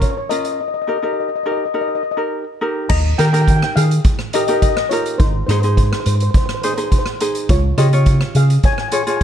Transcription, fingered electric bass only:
2.90 D#2
3.19 D#3
3.76 D#3
5.20 G#1
5.48 G#2
6.06 G#2
7.49 C#2
7.77 C#3
8.35 C#3

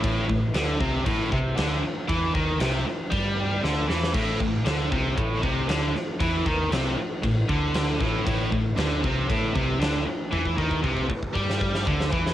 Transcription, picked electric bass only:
0.04 A1
0.29 A1
0.55 D2
0.81 C2
1.06 A1
1.32 C2
1.57 D2
2.09 E2
2.35 D#2
2.60 C2
3.11 G2
3.63 D2
3.89 E2
4.15 A1
4.40 A1
4.65 D2
4.92 C2
5.18 A1
5.43 C2
5.69 D2
5.95 muted picked electric bass stroke
6.21 E2
6.46 D#2
6.72 C2
6.98 muted picked electric bass stroke
7.23 A1
7.49 D2
8.01 A1
8.27 A1
8.52 A1
8.77 D2
9.04 C2
9.30 A1
9.55 C2
9.80 D2
10.06 muted picked electric bass stroke
10.33 E2
10.58 D#2
10.84 C2
11.36 G2
11.87 D2
12.12 E2

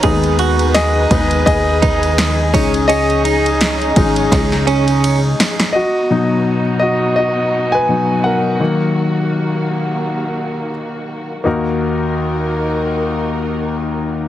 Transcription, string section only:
Already playing: D#3 D#4
0.04 G#4 B4
2.52 C#3 C#4 D#4
5.74 B2 B3 D#4 F#4
8.61 D#2 D#3 A#3
11.46 D#3 D#4 F#4 A#4

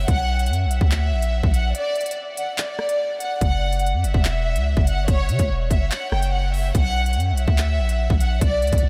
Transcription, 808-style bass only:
0.08 B1
0.50 F#2
0.65 B1
0.81 D2
1.12 A#1
1.43 A#1
3.41 F#1
3.93 F#2
4.04 F#1
4.14 E1
4.56 C#2
4.77 F#1
4.98 G1
5.08 F#1
5.29 C#3
5.39 C#2
5.50 E1
5.71 F#1
6.12 F#1
6.75 B1
7.16 F#2
7.32 B1
7.48 D2
7.79 A#1
8.10 A#1
8.41 B1
8.62 C#2
8.73 B1
8.83 B1

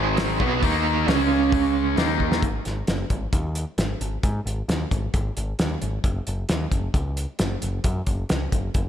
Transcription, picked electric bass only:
Already playing: G#1
0.40 B1
0.63 D#2
1.08 C#2
1.98 D#2
2.43 G#1
2.66 G#1
2.88 F#1
3.10 G#1
3.33 D#2
3.78 G#1
4.01 G#1
4.24 G#2
4.46 G#1
4.68 D#2
4.92 G#1
5.14 G#1
5.37 G#1
5.60 D#2
5.82 G#1
6.04 F#1
6.28 F#1
6.50 D#2
6.72 F#1
6.94 C#2
7.40 F#1
7.63 F#1
7.85 F#2
8.07 F#1
8.31 C#2
8.53 F#1
8.75 F#1

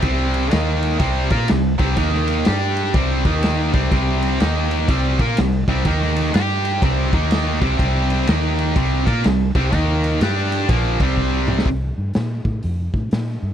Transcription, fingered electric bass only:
0.03 C2
0.52 D#2
1.00 C2
1.31 A#2
1.50 C2
1.80 C2
1.97 D#2
2.48 G2
2.95 C2
3.25 D#2
3.74 C2
3.92 C2
4.41 D#2
4.89 C2
5.19 A#2
5.38 C2
5.68 C2
5.85 D#2
6.35 G2
6.82 C2
7.13 D#2
7.62 C2
7.79 C2
8.28 D#2
8.76 C2
9.07 A#2
9.25 C2
9.55 C2
9.73 D#2
10.21 G2
10.69 A#1
11.01 C2
11.66 C2
11.98 G2
12.16 A#2
12.45 A2
12.64 F2
12.94 A2
13.12 A#2
13.42 G2

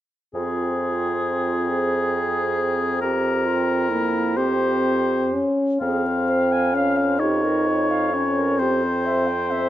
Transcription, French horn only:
0.35 C4
3.03 C4
3.91 A#3
4.37 C4
5.33 C#4
5.82 C4
6.74 C#4
7.19 D#4
8.13 C#4
8.59 C4
9.49 C4

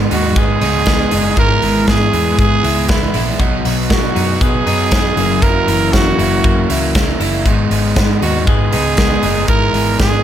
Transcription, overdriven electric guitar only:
Already playing: G#3 B3 D#4
0.11 D#3 G#3 B3 D#4
0.61 D#3 G#3 B3 D#4
0.87 D#3 G#3 B3 D#4
1.11 D#3 G#3 B3 D#4
1.37 G#2 E3 G#3 B3 E4
1.62 E3 G#3 B3 E4
2.13 E3 G#3 B3 E4
2.63 E3 G#3 B3 E4
2.89 E3 G#3 B3 E4
3.13 E3 G#3 B3 E4
3.39 B2 F#3 B3 D#4
3.65 B2 F#3 B3 D#4
4.15 B2 F#3 B3 D#4
4.66 B2 F#3 B3 D#4
4.91 B2 F#3 B3 D#4
5.17 C#3 E3 A#3 E4
5.42 F#2 C#3 E3 A#3 E4
5.67 C#3 E3 A#3 E4
6.18 C#3 E3 A#3 E4
6.69 C#3 E3 A#3 E4
6.95 C#3 E3 A#3 E4
7.20 C#3 E3 A#3 E4
7.46 G#2 D#3 G#3 B3 D#4
7.71 D#3 G#3 B3 D#4
8.22 D#3 G#3 B3 D#4
8.72 D#3 G#3 B3 D#4
8.98 D#3 G#3 B3 D#4
9.23 D#3 G#3 B3 D#4
9.48 G#2 E3 G#3 B3 E4
9.73 E3 G#3 B3 E4

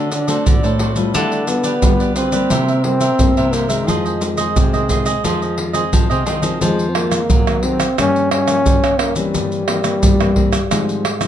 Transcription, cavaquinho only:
Already playing: A4 C5 D5
0.11 muted cavaquinho stroke
0.27 A4 C5 D5
0.63 A4 C5 D5
0.79 F#4 A4 C5 D5
0.96 A4 C5 D5
1.14 F4 G4 B4 D5
1.32 G4 B4 D5
1.48 muted cavaquinho stroke
1.64 G4 B4 D5
2.00 G4 B4 D5
2.16 F4 G4 B4 D5
2.33 G4 B4 D5
2.51 E4 A#4 C5 E5
2.69 A#4 C5 E5
2.85 muted cavaquinho stroke
3.01 A#4 C5 E5
3.37 A#4 C5 E5
3.53 E4 A#4 C5 E5
3.69 A#4 C5 E5
3.87 F4 G#4 C5 D#5
4.05 G#4 C5 D#5
4.21 muted cavaquinho stroke
4.37 G#4 C5 D#5
4.74 G#4 C5 D#5
4.89 F4 G#4 C5 D#5
5.06 G#4 C5 D#5
5.24 F4 G#4 C5 D#5
5.42 G#4 C5 D#5
5.57 muted cavaquinho stroke
5.73 G#4 C5 D#5
6.10 G#4 C5 D#5
6.25 F4 G#4 C5 D#5
6.42 G#4 C5 D#5

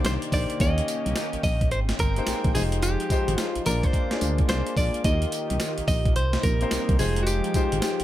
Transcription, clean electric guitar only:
0.06 C5
0.34 D5
0.61 D#5
1.44 D#5
1.72 C5
2.00 A#4
2.55 G#4
2.83 G4
3.40 F4
3.66 A#4
3.84 C5
4.49 C5
4.77 D5
5.05 D#5
5.88 D#5
6.16 C5
6.43 A#4
6.99 G#4
7.23 F#4
7.27 G4

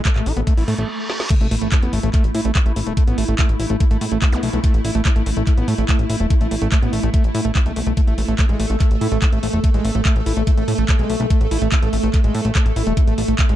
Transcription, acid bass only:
0.05 A3
0.16 A3
0.26 E4
0.37 B3
0.47 A3
0.57 E4
0.68 A3
0.78 A3
1.30 A3
1.41 A3
1.51 A3
1.62 A3
1.72 A3
1.82 B3
1.93 A3
2.03 A3
2.14 A3
2.35 E4
2.45 A3
2.55 A3
2.66 A3
2.76 A3
2.87 A3
2.97 A3
3.07 B3
3.18 A3
3.28 A3
3.39 A3
3.60 E4
3.70 A3
3.80 A3
3.91 A3
4.01 A3
4.12 A3
4.22 A3
4.33 B3
4.43 A3
4.53 A3
4.64 A3
4.85 E4
4.95 A3
5.05 A3
5.16 A3
5.26 A3
5.37 A3
5.47 A3
5.58 B3
5.68 A3
5.78 A3
5.89 A3
6.10 E4
6.20 A3
6.30 A3
6.41 A3
6.51 A3
6.62 A3
6.72 A3
6.82 B3
6.93 A3
7.03 A3
7.14 A3
7.35 E4
7.45 A3
7.55 A3
7.66 A3
7.76 A3
7.87 A3
7.97 A3
8.07 A3
8.18 A3
8.28 A3
8.39 A3
8.49 G#3
8.60 A3
8.70 A3
8.80 A3
9.01 E4
9.12 A3
9.22 A3
9.32 A3
9.43 A3
9.53 A3
9.64 A3
9.74 G#3
9.85 A3
9.95 A3
10.05 A3
10.26 E4
10.37 A3
10.47 A3
10.58 A3
10.68 A3
10.78 A3
10.89 A3
10.99 G#3
11.10 A3
11.20 A3
11.30 A3
11.51 E4
11.62 A3
11.72 A3
11.82 A3
11.93 A3
12.03 A3
12.14 A3
12.24 G#3
12.35 A3
12.45 A3
12.55 A3
12.76 E4
12.87 A3
12.97 A3
13.07 A3
13.18 A3
13.28 A3
13.39 A3
13.49 G#3

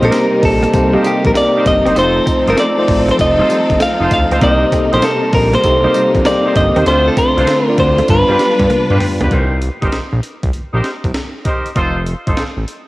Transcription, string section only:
Already playing: C3 G3 A#3 D#4
1.96 F3 C4 A4
4.41 C3 G3 A#3
6.87 D3 A3 C4 F4
8.08 G3 D4 B4

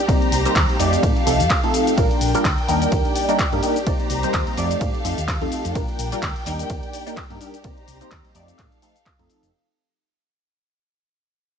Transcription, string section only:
Already playing: G4
0.09 C5 A#5
0.79 A4 F5
1.98 D4 A#4 G5
2.69 G4 D5
3.87 C5 A#5
4.57 A4 F5
5.76 D4 A#4 G5
6.46 G4 D5
7.65 C5 A#5
8.36 A4 F5

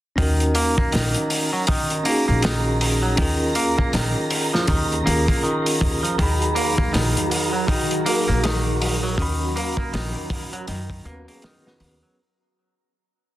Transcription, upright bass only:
0.19 D#2
0.94 A#1
2.28 A#1
3.18 D#2
3.94 A#1
4.68 D#2
5.07 D#2
5.81 D#2
6.19 D#2
6.94 A#1
8.29 A#1
9.18 D#2
9.93 A#1
10.68 F#2
11.05 D#2
11.80 D#2

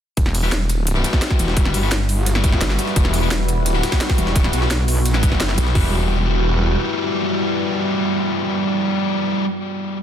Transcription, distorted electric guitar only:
0.43 G3 E4 F#4 B4
0.95 G3 E4 F#4 B4
1.83 G3 E4 F#4 B4
2.35 G3 E4 F#4 B4
3.22 G3 E4 F#4 B4
3.74 G3 E4 F#4 B4
4.61 G3 E4 F#4 B4
5.14 G3 E4 F#4 B4
5.75 G3 E4 F#4 B4

